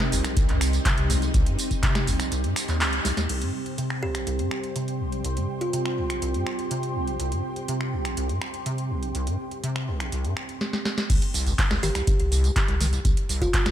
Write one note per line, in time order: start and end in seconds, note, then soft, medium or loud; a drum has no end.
0.00 0.14 C3 medium
0.00 3.25 G3 medium
0.00 3.25 C4 medium
0.00 3.28 C4 medium
0.00 3.28 D#4 medium
0.00 3.29 G4 medium
0.00 3.29 G5 medium
0.00 3.29 C6 medium
0.00 finger snap medium
0.00 snare medium
0.12 0.21 G1 medium
0.12 0.26 C2 medium
0.12 open hi-hat loud
0.12 tambourine medium
0.24 0.35 A#1 medium
0.24 finger snap medium
0.24 closed hi-hat medium
0.24 tambourine soft
0.37 0.50 C2 medium
0.37 kick loud
0.37 closed hi-hat medium
0.37 tambourine soft
0.49 0.79 C2 medium
0.49 0.59 G2 medium
0.49 clap soft
0.49 closed hi-hat soft
0.61 finger snap medium
0.61 open hi-hat loud
0.61 tambourine medium
0.73 closed hi-hat soft
0.73 tambourine soft
0.85 1.11 C3 medium
0.85 kick loud
0.85 clap loud
0.85 closed hi-hat medium
0.85 tambourine soft
0.98 1.28 C2 medium
0.98 closed hi-hat soft
1.10 1.24 C2 medium
1.10 snare soft
1.10 open hi-hat loud
1.10 tambourine medium
1.22 1.32 A#1 medium
1.22 closed hi-hat soft
1.22 tambourine soft
1.34 1.48 C2 medium
1.34 1.43 C2 loud
1.34 kick loud
1.34 closed hi-hat medium
1.34 tambourine soft
1.46 1.56 G2 medium
1.46 closed hi-hat medium
1.59 open hi-hat loud
1.59 tambourine medium
1.71 1.79 G1 medium
1.71 kick medium
1.71 closed hi-hat soft
1.71 tambourine soft
1.83 2.09 C3 medium
1.83 kick loud
1.83 clap loud
1.83 closed hi-hat medium
1.83 tambourine soft
1.95 finger snap medium
1.95 snare medium
1.95 closed hi-hat soft
2.07 2.16 G1 medium
2.07 2.21 C2 medium
2.07 open hi-hat loud
2.07 tambourine medium
2.20 2.30 A#1 medium
2.20 finger snap medium
2.20 closed hi-hat medium
2.20 tambourine soft
2.32 2.46 C2 medium
2.32 closed hi-hat medium
2.32 tambourine soft
2.44 2.54 G2 medium
2.44 closed hi-hat soft
2.56 finger snap medium
2.56 open hi-hat loud
2.56 tambourine medium
2.68 2.82 D#2 medium
2.68 clap soft
2.68 closed hi-hat soft
2.68 tambourine soft
2.81 2.94 C#2 medium
2.81 clap loud
2.81 open hi-hat medium
2.81 tambourine soft
2.93 3.00 C2 medium
2.93 closed hi-hat soft
3.05 3.12 C2 loud
3.05 snare soft
3.05 open hi-hat loud
3.05 tambourine medium
3.17 3.27 D#2 medium
3.17 snare medium
3.17 closed hi-hat soft
3.17 tambourine soft
3.29 3.43 C2 medium
3.29 10.57 C3 medium
3.29 10.57 G3 medium
3.29 10.61 C4 medium
3.29 10.57 G4 medium
3.29 10.57 C5 medium
3.29 closed hi-hat medium
3.29 crash medium
3.42 3.52 G2 medium
3.42 closed hi-hat medium
3.57 10.61 G5 medium
3.66 closed hi-hat soft
3.78 4.04 C3 medium
3.78 10.61 C6 medium
3.78 closed hi-hat medium
3.90 10.61 G4 medium
3.90 finger snap medium
4.03 4.16 C2 medium
4.03 4.20 G4 medium
4.15 4.25 A#1 medium
4.15 finger snap medium
4.15 closed hi-hat medium
4.27 4.41 C2 medium
4.27 closed hi-hat medium
4.39 4.49 G2 medium
4.39 closed hi-hat soft
4.51 finger snap medium
4.64 closed hi-hat soft
4.76 5.02 C3 medium
4.76 closed hi-hat medium
4.88 closed hi-hat soft
5.00 5.14 C2 medium
5.12 5.22 A#1 medium
5.12 closed hi-hat soft
5.24 5.38 C2 medium
5.24 closed hi-hat medium
5.37 5.47 G2 medium
5.37 closed hi-hat medium
5.61 6.10 F4 medium
5.61 closed hi-hat soft
5.73 5.99 C3 medium
5.73 closed hi-hat medium
5.86 finger snap medium
5.98 6.11 C2 medium
6.10 6.20 A#1 medium
6.10 finger snap medium
6.10 closed hi-hat medium
6.22 6.36 C2 medium
6.22 closed hi-hat medium
6.34 6.44 G2 medium
6.34 closed hi-hat soft
6.47 finger snap medium
6.59 closed hi-hat soft
6.71 6.97 C3 medium
6.71 closed hi-hat medium
6.83 closed hi-hat soft
6.95 7.09 C2 medium
7.07 7.17 A#1 medium
7.07 closed hi-hat soft
7.20 7.33 C2 medium
7.20 closed hi-hat medium
7.32 7.42 G2 medium
7.32 closed hi-hat soft
7.56 closed hi-hat soft
7.68 7.94 C3 medium
7.68 closed hi-hat medium
7.81 finger snap medium
7.93 8.06 C2 medium
8.05 8.15 A#1 medium
8.05 finger snap medium
8.05 closed hi-hat soft
8.17 8.31 C2 medium
8.17 closed hi-hat medium
8.29 8.39 G2 medium
8.29 closed hi-hat soft
8.42 finger snap medium
8.54 closed hi-hat soft
8.66 8.92 C3 medium
8.66 closed hi-hat medium
8.78 closed hi-hat soft
8.90 9.04 C2 medium
9.02 9.13 A#1 medium
9.02 closed hi-hat soft
9.15 9.28 C2 medium
9.15 closed hi-hat medium
9.27 9.37 G2 medium
9.27 closed hi-hat soft
9.51 closed hi-hat soft
9.63 9.89 C3 medium
9.63 closed hi-hat medium
9.76 finger snap medium
9.88 10.02 C2 medium
10.00 10.10 A#1 medium
10.00 finger snap medium
10.00 closed hi-hat soft
10.12 10.26 C2 medium
10.12 closed hi-hat medium
10.24 10.35 G2 medium
10.24 closed hi-hat soft
10.37 finger snap medium
10.49 closed hi-hat soft
10.61 snare medium
10.73 snare medium
10.85 snare medium
10.98 snare medium
11.10 11.18 C2 loud
11.10 kick loud
11.10 closed hi-hat medium
11.10 crash loud
11.10 tambourine soft
11.22 closed hi-hat medium
11.34 11.48 C2 medium
11.34 open hi-hat loud
11.34 tambourine medium
11.46 11.55 G1 medium
11.46 11.53 C#2 medium
11.46 closed hi-hat soft
11.46 tambourine soft
11.59 kick loud
11.59 clap loud
11.59 closed hi-hat medium
11.59 tambourine soft
11.71 11.78 C2 loud
11.71 finger snap medium
11.71 snare medium
11.83 11.91 G1 medium
11.83 11.90 D#3 medium
11.83 12.01 G4 medium
11.83 open hi-hat loud
11.83 tambourine medium
11.95 12.02 C2 medium
11.95 finger snap medium
11.95 closed hi-hat medium
11.95 tambourine soft
12.07 kick loud
12.07 closed hi-hat medium
12.07 tambourine soft
12.20 12.50 C2 medium
12.20 closed hi-hat soft
12.32 12.45 C2 medium
12.32 open hi-hat loud
12.32 tambourine medium
12.44 12.51 C#2 medium
12.44 closed hi-hat soft
12.44 tambourine soft
12.56 kick loud
12.56 clap loud
12.56 closed hi-hat medium
12.56 tambourine soft
12.68 12.75 C2 loud
12.68 12.99 C2 medium
12.68 closed hi-hat soft
12.80 12.87 D#3 medium
12.80 snare soft
12.80 open hi-hat loud
12.80 tambourine medium
12.93 12.99 C2 medium
12.93 closed hi-hat soft
12.93 tambourine soft
13.05 13.13 C2 loud
13.05 kick loud
13.05 closed hi-hat medium
13.05 tambourine soft
13.17 closed hi-hat medium
13.29 13.43 C2 medium
13.29 open hi-hat loud
13.29 tambourine medium
13.41 13.50 G1 medium
13.41 13.48 C#2 medium
13.41 13.71 F4 medium
13.41 kick medium
13.41 closed hi-hat soft
13.41 tambourine soft
13.54 kick loud
13.54 clap loud
13.54 closed hi-hat medium
13.54 tambourine soft
13.66 13.71 C2 loud
13.66 finger snap medium
13.66 snare medium
13.66 closed hi-hat soft